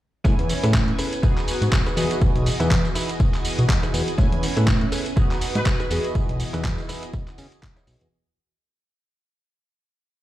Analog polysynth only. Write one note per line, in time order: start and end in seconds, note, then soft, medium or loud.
0.24 1.19 B3 medium
0.24 1.19 C#4 medium
0.24 1.19 E4 medium
0.24 1.20 G#5 medium
1.22 1.92 B3 medium
1.22 1.93 D#4 medium
1.22 1.93 F#4 medium
1.22 1.93 G#4 medium
1.96 4.14 B3 loud
1.96 4.14 F#4 medium
1.96 4.14 G#4 loud
1.96 4.14 D#5 medium
4.18 5.12 B3 medium
4.18 5.12 C#4 medium
4.18 5.13 E4 medium
4.18 5.13 G#5 medium
5.16 5.86 B3 medium
5.16 5.86 D#4 medium
5.16 5.87 F#4 medium
5.16 5.87 G#4 medium
5.90 8.07 B3 loud
5.90 8.08 F#4 medium
5.90 8.08 G#4 loud
5.90 8.08 D#5 medium